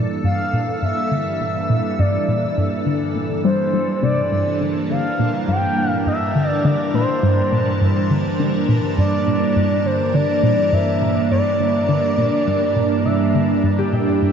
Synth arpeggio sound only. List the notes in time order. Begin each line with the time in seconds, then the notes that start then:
0.24 G2
0.53 A#2
0.82 G2
1.12 D3
1.41 A#2
1.70 A#2
1.99 G2
2.28 A#2
2.58 G2
2.86 D3
3.15 A#2
3.45 G3
3.74 G3
4.03 C3
4.32 G2
4.61 D3
4.90 D3
5.19 A#2
5.48 G2
5.77 A#2
6.07 G2
6.36 D3
6.65 D3
6.94 A#2
7.23 G2
7.52 A#2
7.81 G2
8.11 D3
8.40 D3
8.69 A#2
8.98 G2
9.27 A#2
9.56 G2
9.85 D3
10.14 D3
10.43 A#2
10.73 G2
11.02 A#2
11.31 G2
11.60 D3
11.89 D3
12.18 A#2
12.47 G2
12.76 A#2
13.05 C3
13.35 D3
13.64 G2
13.93 A#2
14.22 G2